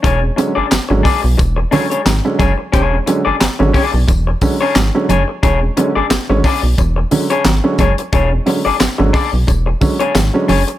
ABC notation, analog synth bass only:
X:1
M:4/4
L:1/16
Q:"Swing 16ths" 1/4=89
K:Emix
V:1 name="Analog synth bass" clef=bass
E,,,2 z G,,, G,,, G,,, z B,,, E,,,2 z2 G,,, z F,,, z | E,,,2 z G,,, G,,, G,,, z B,,, E,,,2 z2 G,,, z F,,, z | E,,,2 z G,,, G,,, G,,, z B,,, E,,,2 z2 G,,, z F,,, z | E,,,2 z G,,, G,,, G,,, z B,,, E,,,2 z2 G,,, z F,,, z |]